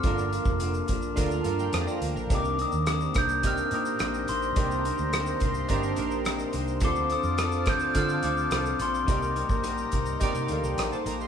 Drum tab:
HH |x-x-x-x-x-x-x-x-|x-x-x-x-x-x-x-x-|x-x-x-x-x-x-x-x-|x-x-x-x-x-x-x-x-|
SH |xxxxxxxxxxxxxxxx|xxxxxxxxxxxxxxxx|xxxxxxxxxxxxxxxx|xxxxxxxxxxxxxxxx|
SD |------------r---|----r-r-----r---|----r-------r---|----r-r-----r---|
BD |o--o--o-o-------|o-----o-o-------|o-----o-o-------|o-----o-o-------|

HH |x-x-x-x-x-x-x-x-|
SH |xxxxxxxxxxxxxxxx|
SD |------------r---|
BD |o--o--o-o-------|